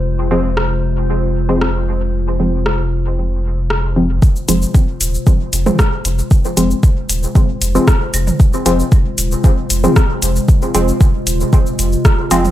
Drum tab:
HH |----------------|----------------|--x---x---x---x-|--x---x---x---x-|
SH |----------------|----------------|xxxxx-xxx-xxx-xx|xxxxx-xxx-xxx-xx|
CL |----------------|----------------|----------------|--------------x-|
SD |----r-------r---|----r-------r---|------------r---|------------r---|
T2 |----------------|----------------|-----------o----|--------o------o|
BD |----------------|----------------|o---o---o---o---|o---o---o---o---|

HH |--x---x---x---x-|--x---x---x---x-|
SH |xxxxx-xxx-xxx-xx|xxxxx-xxxxxxx-xx|
CL |----------------|--------------x-|
SD |------------r---|------------r---|
T2 |-----------o----|--------o------o|
BD |o---o---o---o---|o---o---o---o---|